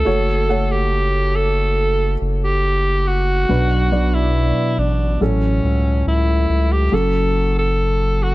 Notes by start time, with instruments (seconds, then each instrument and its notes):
Already playing: alto saxophone A4
0.05 sub bass F#1, upright piano A3 F#4 C#5
0.49 upright piano A3 C#5 F#5
0.72 alto saxophone G4
1.36 alto saxophone A4
2.21 sub bass F#1
2.44 alto saxophone G4
3.07 alto saxophone F#4
3.49 sub bass B1, upright piano B2 F#3 D4 B4
3.91 upright piano F#3 D4 D5
4.15 alto saxophone E4
4.78 sub bass A1, alto saxophone D4
5.21 sub bass A1, upright piano A2 F#3 C#4 A4, alto saxophone C#4
5.64 sub bass C#2
6.06 sub bass C#2, alto saxophone E4
6.49 sub bass C#2
6.72 alto saxophone G4
6.92 sub bass F#1, upright piano F#3 C#4 A4, alto saxophone A4
7.59 alto saxophone A4
8.23 alto saxophone F#4